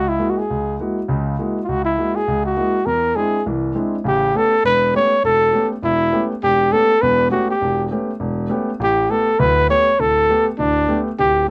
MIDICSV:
0, 0, Header, 1, 3, 480
1, 0, Start_track
1, 0, Tempo, 296883
1, 781, Time_signature, 4, 2, 24, 8
1, 18595, End_track
2, 0, Start_track
2, 0, Title_t, "Trumpet"
2, 0, Program_c, 0, 56
2, 135, Note_on_c, 0, 64, 80
2, 481, Note_on_c, 0, 66, 53
2, 505, Note_off_c, 0, 64, 0
2, 615, Note_on_c, 0, 68, 69
2, 639, Note_off_c, 0, 66, 0
2, 1273, Note_off_c, 0, 68, 0
2, 2654, Note_on_c, 0, 65, 57
2, 2730, Note_on_c, 0, 66, 81
2, 2754, Note_off_c, 0, 65, 0
2, 2982, Note_off_c, 0, 66, 0
2, 2991, Note_on_c, 0, 64, 74
2, 3482, Note_on_c, 0, 68, 79
2, 3507, Note_off_c, 0, 64, 0
2, 3957, Note_off_c, 0, 68, 0
2, 3970, Note_on_c, 0, 66, 80
2, 4621, Note_on_c, 0, 70, 96
2, 4646, Note_off_c, 0, 66, 0
2, 5106, Note_on_c, 0, 68, 81
2, 5130, Note_off_c, 0, 70, 0
2, 5584, Note_off_c, 0, 68, 0
2, 6591, Note_on_c, 0, 67, 86
2, 7060, Note_on_c, 0, 69, 88
2, 7084, Note_off_c, 0, 67, 0
2, 7514, Note_off_c, 0, 69, 0
2, 7523, Note_on_c, 0, 71, 97
2, 7959, Note_off_c, 0, 71, 0
2, 8020, Note_on_c, 0, 73, 94
2, 8448, Note_off_c, 0, 73, 0
2, 8487, Note_on_c, 0, 69, 97
2, 9190, Note_off_c, 0, 69, 0
2, 9446, Note_on_c, 0, 64, 91
2, 10149, Note_off_c, 0, 64, 0
2, 10401, Note_on_c, 0, 67, 91
2, 10868, Note_on_c, 0, 69, 98
2, 10892, Note_off_c, 0, 67, 0
2, 11340, Note_on_c, 0, 71, 97
2, 11364, Note_off_c, 0, 69, 0
2, 11816, Note_off_c, 0, 71, 0
2, 11825, Note_on_c, 0, 66, 82
2, 12092, Note_off_c, 0, 66, 0
2, 12132, Note_on_c, 0, 67, 78
2, 12744, Note_off_c, 0, 67, 0
2, 14274, Note_on_c, 0, 67, 92
2, 14716, Note_on_c, 0, 69, 94
2, 14741, Note_off_c, 0, 67, 0
2, 15187, Note_on_c, 0, 71, 100
2, 15211, Note_off_c, 0, 69, 0
2, 15663, Note_off_c, 0, 71, 0
2, 15683, Note_on_c, 0, 73, 102
2, 16167, Note_on_c, 0, 69, 101
2, 16192, Note_off_c, 0, 73, 0
2, 16924, Note_off_c, 0, 69, 0
2, 17113, Note_on_c, 0, 62, 93
2, 17824, Note_off_c, 0, 62, 0
2, 18092, Note_on_c, 0, 67, 98
2, 18525, Note_off_c, 0, 67, 0
2, 18595, End_track
3, 0, Start_track
3, 0, Title_t, "Grand piano"
3, 0, Program_c, 1, 0
3, 0, Note_on_c, 1, 37, 61
3, 251, Note_off_c, 1, 37, 0
3, 313, Note_on_c, 1, 56, 48
3, 314, Note_on_c, 1, 58, 46
3, 320, Note_on_c, 1, 64, 42
3, 330, Note_on_c, 1, 66, 55
3, 616, Note_off_c, 1, 56, 0
3, 616, Note_off_c, 1, 58, 0
3, 619, Note_off_c, 1, 64, 0
3, 624, Note_off_c, 1, 66, 0
3, 815, Note_on_c, 1, 37, 58
3, 1210, Note_off_c, 1, 37, 0
3, 1290, Note_on_c, 1, 56, 46
3, 1297, Note_on_c, 1, 58, 41
3, 1303, Note_on_c, 1, 64, 43
3, 1307, Note_on_c, 1, 66, 53
3, 1585, Note_off_c, 1, 56, 0
3, 1588, Note_off_c, 1, 58, 0
3, 1591, Note_off_c, 1, 64, 0
3, 1593, Note_off_c, 1, 66, 0
3, 1752, Note_on_c, 1, 49, 62
3, 1758, Note_on_c, 1, 37, 64
3, 2158, Note_off_c, 1, 49, 0
3, 2161, Note_off_c, 1, 37, 0
3, 2247, Note_on_c, 1, 56, 50
3, 2253, Note_on_c, 1, 64, 46
3, 2256, Note_on_c, 1, 58, 45
3, 2260, Note_on_c, 1, 66, 55
3, 2543, Note_off_c, 1, 56, 0
3, 2546, Note_off_c, 1, 64, 0
3, 2548, Note_off_c, 1, 58, 0
3, 2550, Note_off_c, 1, 66, 0
3, 2729, Note_on_c, 1, 37, 61
3, 3127, Note_off_c, 1, 37, 0
3, 3201, Note_on_c, 1, 58, 40
3, 3204, Note_on_c, 1, 56, 45
3, 3213, Note_on_c, 1, 66, 51
3, 3215, Note_on_c, 1, 64, 43
3, 3501, Note_off_c, 1, 58, 0
3, 3502, Note_off_c, 1, 56, 0
3, 3506, Note_off_c, 1, 66, 0
3, 3507, Note_off_c, 1, 64, 0
3, 3684, Note_on_c, 1, 37, 64
3, 4085, Note_off_c, 1, 37, 0
3, 4152, Note_on_c, 1, 56, 51
3, 4156, Note_on_c, 1, 58, 46
3, 4166, Note_on_c, 1, 64, 44
3, 4166, Note_on_c, 1, 66, 56
3, 4456, Note_off_c, 1, 56, 0
3, 4458, Note_off_c, 1, 58, 0
3, 4463, Note_off_c, 1, 64, 0
3, 4463, Note_off_c, 1, 66, 0
3, 4626, Note_on_c, 1, 40, 60
3, 5036, Note_off_c, 1, 40, 0
3, 5107, Note_on_c, 1, 56, 45
3, 5116, Note_on_c, 1, 60, 41
3, 5119, Note_on_c, 1, 62, 41
3, 5129, Note_on_c, 1, 64, 52
3, 5414, Note_off_c, 1, 56, 0
3, 5418, Note_off_c, 1, 60, 0
3, 5419, Note_off_c, 1, 62, 0
3, 5425, Note_off_c, 1, 64, 0
3, 5598, Note_on_c, 1, 36, 63
3, 5605, Note_on_c, 1, 52, 68
3, 6002, Note_off_c, 1, 36, 0
3, 6006, Note_off_c, 1, 52, 0
3, 6070, Note_on_c, 1, 56, 51
3, 6072, Note_on_c, 1, 60, 45
3, 6078, Note_on_c, 1, 64, 58
3, 6079, Note_on_c, 1, 62, 45
3, 6375, Note_off_c, 1, 56, 0
3, 6376, Note_off_c, 1, 60, 0
3, 6379, Note_off_c, 1, 62, 0
3, 6379, Note_off_c, 1, 64, 0
3, 6536, Note_on_c, 1, 49, 66
3, 6538, Note_on_c, 1, 33, 66
3, 6950, Note_off_c, 1, 49, 0
3, 6951, Note_off_c, 1, 33, 0
3, 7026, Note_on_c, 1, 57, 51
3, 7027, Note_on_c, 1, 61, 43
3, 7029, Note_on_c, 1, 59, 47
3, 7033, Note_on_c, 1, 67, 51
3, 7332, Note_off_c, 1, 57, 0
3, 7333, Note_off_c, 1, 61, 0
3, 7334, Note_off_c, 1, 59, 0
3, 7336, Note_off_c, 1, 67, 0
3, 7501, Note_on_c, 1, 28, 68
3, 7912, Note_off_c, 1, 28, 0
3, 7985, Note_on_c, 1, 59, 48
3, 7988, Note_on_c, 1, 57, 53
3, 7988, Note_on_c, 1, 61, 48
3, 7993, Note_on_c, 1, 67, 56
3, 8292, Note_off_c, 1, 59, 0
3, 8293, Note_off_c, 1, 57, 0
3, 8293, Note_off_c, 1, 61, 0
3, 8296, Note_off_c, 1, 67, 0
3, 8468, Note_on_c, 1, 28, 62
3, 8875, Note_off_c, 1, 28, 0
3, 8931, Note_on_c, 1, 57, 51
3, 8936, Note_on_c, 1, 59, 47
3, 8938, Note_on_c, 1, 61, 48
3, 8943, Note_on_c, 1, 67, 53
3, 9244, Note_off_c, 1, 57, 0
3, 9247, Note_off_c, 1, 59, 0
3, 9248, Note_off_c, 1, 61, 0
3, 9251, Note_off_c, 1, 67, 0
3, 9419, Note_on_c, 1, 28, 72
3, 9830, Note_off_c, 1, 28, 0
3, 9893, Note_on_c, 1, 57, 52
3, 9900, Note_on_c, 1, 59, 51
3, 9900, Note_on_c, 1, 61, 49
3, 9907, Note_on_c, 1, 67, 58
3, 10205, Note_off_c, 1, 57, 0
3, 10208, Note_off_c, 1, 59, 0
3, 10208, Note_off_c, 1, 61, 0
3, 10212, Note_off_c, 1, 67, 0
3, 10399, Note_on_c, 1, 28, 69
3, 10801, Note_off_c, 1, 28, 0
3, 10860, Note_on_c, 1, 57, 50
3, 10874, Note_on_c, 1, 59, 48
3, 10877, Note_on_c, 1, 61, 49
3, 10881, Note_on_c, 1, 67, 57
3, 11168, Note_off_c, 1, 57, 0
3, 11175, Note_off_c, 1, 59, 0
3, 11176, Note_off_c, 1, 61, 0
3, 11179, Note_off_c, 1, 67, 0
3, 11360, Note_on_c, 1, 40, 75
3, 11364, Note_on_c, 1, 28, 73
3, 11761, Note_off_c, 1, 40, 0
3, 11763, Note_off_c, 1, 28, 0
3, 11824, Note_on_c, 1, 57, 58
3, 11826, Note_on_c, 1, 59, 52
3, 11830, Note_on_c, 1, 61, 51
3, 11838, Note_on_c, 1, 67, 62
3, 12130, Note_off_c, 1, 57, 0
3, 12131, Note_off_c, 1, 59, 0
3, 12133, Note_off_c, 1, 61, 0
3, 12137, Note_off_c, 1, 67, 0
3, 12314, Note_on_c, 1, 28, 69
3, 12718, Note_off_c, 1, 28, 0
3, 12784, Note_on_c, 1, 57, 51
3, 12792, Note_on_c, 1, 59, 51
3, 12793, Note_on_c, 1, 61, 48
3, 12799, Note_on_c, 1, 67, 59
3, 13090, Note_off_c, 1, 57, 0
3, 13094, Note_off_c, 1, 59, 0
3, 13094, Note_off_c, 1, 61, 0
3, 13098, Note_off_c, 1, 67, 0
3, 13258, Note_on_c, 1, 28, 71
3, 13669, Note_off_c, 1, 28, 0
3, 13733, Note_on_c, 1, 57, 57
3, 13741, Note_on_c, 1, 59, 51
3, 13751, Note_on_c, 1, 67, 62
3, 13752, Note_on_c, 1, 61, 48
3, 14045, Note_off_c, 1, 57, 0
3, 14049, Note_off_c, 1, 59, 0
3, 14054, Note_off_c, 1, 61, 0
3, 14054, Note_off_c, 1, 67, 0
3, 14226, Note_on_c, 1, 33, 69
3, 14229, Note_on_c, 1, 45, 67
3, 14634, Note_off_c, 1, 33, 0
3, 14635, Note_off_c, 1, 45, 0
3, 14704, Note_on_c, 1, 57, 52
3, 14711, Note_on_c, 1, 59, 50
3, 14714, Note_on_c, 1, 67, 54
3, 15010, Note_off_c, 1, 57, 0
3, 15014, Note_off_c, 1, 59, 0
3, 15016, Note_off_c, 1, 67, 0
3, 15188, Note_on_c, 1, 38, 72
3, 15191, Note_on_c, 1, 26, 73
3, 15595, Note_off_c, 1, 38, 0
3, 15597, Note_off_c, 1, 26, 0
3, 15657, Note_on_c, 1, 57, 57
3, 15662, Note_on_c, 1, 59, 50
3, 15676, Note_on_c, 1, 67, 62
3, 15967, Note_off_c, 1, 57, 0
3, 15970, Note_off_c, 1, 59, 0
3, 15977, Note_off_c, 1, 67, 0
3, 16162, Note_on_c, 1, 26, 69
3, 16563, Note_off_c, 1, 26, 0
3, 16635, Note_on_c, 1, 57, 54
3, 16645, Note_on_c, 1, 59, 51
3, 16656, Note_on_c, 1, 67, 57
3, 16937, Note_off_c, 1, 57, 0
3, 16942, Note_off_c, 1, 59, 0
3, 16947, Note_off_c, 1, 67, 0
3, 17123, Note_on_c, 1, 26, 75
3, 17524, Note_off_c, 1, 26, 0
3, 17599, Note_on_c, 1, 57, 60
3, 17600, Note_on_c, 1, 59, 53
3, 17608, Note_on_c, 1, 67, 60
3, 17899, Note_off_c, 1, 57, 0
3, 17900, Note_off_c, 1, 59, 0
3, 17904, Note_off_c, 1, 67, 0
3, 18097, Note_on_c, 1, 26, 67
3, 18492, Note_off_c, 1, 26, 0
3, 18595, End_track
0, 0, End_of_file